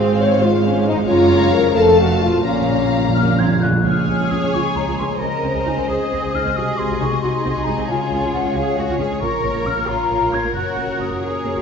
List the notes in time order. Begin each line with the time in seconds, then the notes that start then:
Already playing: G#1 G#2 C4 F4 G#4 C5 F5
0.20 C#5
0.42 G#3 F4
0.65 C#4
0.87 F#2 D#4
0.95 A#3
0.99 F4
1.04 C#5
1.08 F#1 F#2 F4 C#5 F5 A#5
1.53 A#4
1.57 F2
1.62 C4
1.67 F4
1.71 F5
1.76 F1 F2 A3 A4 F5 A5
1.99 F#4
2.21 F4
2.26 A#2
2.31 A#3
2.35 F4
2.40 C#4 F5
2.45 A#1 A#2 A#3 F5 A#5
2.53 A#2
2.61 A#2
2.69 A#2
2.76 A#2
2.85 A#2
2.92 A#2
3.00 A#2
3.09 A#2
3.14 A#2 A#3 F6
3.23 A#2
3.32 A#2
3.39 A#2 C4 G#6
3.48 A#2
3.56 A#2
3.61 A#2 C#4 F#6
3.71 A#2
3.84 C#2 C#3 G#3 C#4 F4 G#4 C#5 G#5 F6
4.07 C#2 G#3
4.19 C#2 F4
4.30 C#2 C#4 F4 D#6
4.42 C#2 G#3
4.53 C#2 G#3 C#4 F4 C#5 C#6
4.75 C#2 G#3 F4 A#5
4.88 C#2 F4
4.97 C#2 G#3 C#4 C6
5.11 C#2 G#3
5.20 C#2 C#3 G#3 C4 G#4 A#4 C5 D#5 A#5
5.44 C#2 G#3 C4
5.54 C#2 G#4
5.66 C#2 D#4 G#4 G#5
5.77 C#2 C4
5.88 C#2 G#3 C4 G#4 C5 D#6
6.11 C#2 C4 G#4
6.22 C#2 G#4
6.33 C#2 G#3 D#4 F6
6.45 C#2 C4
6.55 C2 C3 G#3 F#4 G#4 D#6
6.59 F#4
6.78 C2 G#3 C4 C6
6.90 C2 F#4
7.00 C2 D#4 F#4 C#6
7.12 C2 C4
7.21 C2 G#3 D#4 F#4 D#5 C6
7.45 C2 C4 F#4
7.56 C2 F#4
7.65 C2 G#3 D#4 A#5
7.78 C2 C4
7.89 C#2 C#3 G#3 F4 C#5 G#5
8.12 C#2 G#3
8.22 C#2 F4
8.33 C#2 C#4 F4 F#5
8.44 C#2 G#3
8.55 C#2 G#3 F4 G#4 C#5 F5
8.78 C#2 G#3 F4 F#4
8.88 C#2 F4
8.99 C#2 G#3 C#4 G#4
9.10 C#2 G#3
9.21 A#1 A#2 A#3 F4 A#4 C#6
9.43 A#1 A#3
9.54 A#1 F4
9.65 A#1 C#4 F4 F6
9.77 A#1 A#3
9.87 A#1 A#3 F4 C#5 A#5
10.10 A#1 A#3 F4
10.21 A#1 F4
10.32 A#1 A#3 C#4 G#6
10.43 A#1 A#3
10.54 F#1 F#2 A#3 F#4 C#5 F#6
10.76 F#1 A#3
10.87 F#1 F#4
10.99 F#1 C#4 F#4 D#6
11.11 F#1 A#3
11.21 F#1 F#4 G#4 C#5 D#6
11.44 F#1 A#3 F#4
11.55 F#1 F#4